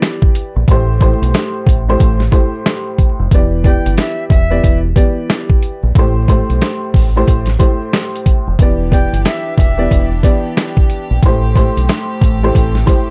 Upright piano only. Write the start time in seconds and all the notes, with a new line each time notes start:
Already playing: E3 B3 G4 D5
0.70 A2 A3 G4 C5
1.01 A2 A3 G4 C5
1.88 A2 A3 G4 C5
2.31 A2 A3 G4 C5
3.33 E3 B3 G4 D5
3.64 E3 B3 G4 D5
4.50 E3 B3 G4 D5
4.95 E3 B3 G4 D5
5.97 A2 A3 G4 C5
6.28 A2 A3 G4 C5
7.16 A2 A3 G4 C5
7.59 A2 A3 G4 C5
8.61 E3 B3 G4 D5
8.91 E3 B3 G4 D5
9.78 E3 B3 G4 D5
10.23 E3 B3 G4 D5
11.24 A2 A3 G4 C5
11.55 A2 A3 G4 C5
12.43 A2 A3 G4 C5
12.86 A2 A3 G4 C5